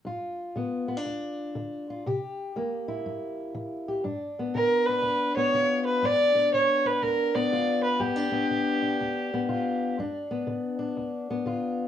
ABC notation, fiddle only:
X:1
M:4/4
L:1/8
Q:"Swing" 1/4=121
K:Gmix
V:1 name="Fiddle"
z8 | z8 | z2 _B =B2 ^c2 B | d2 ^c B _B d2 =B |
G8 | z8 |]